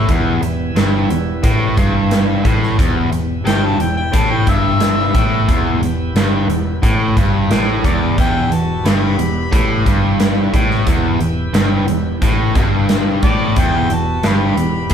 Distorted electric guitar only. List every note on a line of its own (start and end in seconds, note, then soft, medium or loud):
0.10 0.42 E2 medium
0.43 0.70 E2 medium
0.76 1.09 G2 loud
1.10 1.37 E2 medium
1.43 1.76 A2 medium
1.77 2.44 G2 loud
2.44 2.77 A2 medium
2.78 3.10 E2 medium
3.11 3.39 E2 medium
3.45 3.78 G2 loud
3.79 4.07 E2 medium
4.12 4.46 A2 loud
4.47 5.14 G2 loud
5.15 5.48 A2 loud
5.49 5.81 E2 medium
5.83 6.10 E2 medium
6.16 6.49 G2 medium
6.50 6.77 E2 medium
6.82 7.16 A2 loud
7.17 7.49 G2 loud
7.51 7.83 A2 loud
7.84 8.17 E2 medium
8.18 8.50 E2 medium
8.52 8.79 E2 medium
8.86 9.18 G2 loud
9.19 9.46 E2 medium
9.52 9.85 A2 medium
9.85 10.52 G2 loud
10.54 10.87 A2 medium
10.87 11.20 E2 medium
11.21 11.48 E2 medium
11.54 11.87 G2 loud
11.88 12.15 E2 medium
12.22 12.55 A2 loud
12.55 13.21 G2 loud
13.23 13.56 A2 medium
13.57 13.89 E2 medium
13.91 14.17 E2 medium
14.23 14.56 G2 medium
14.57 14.85 E2 medium
14.90 14.94 A2 medium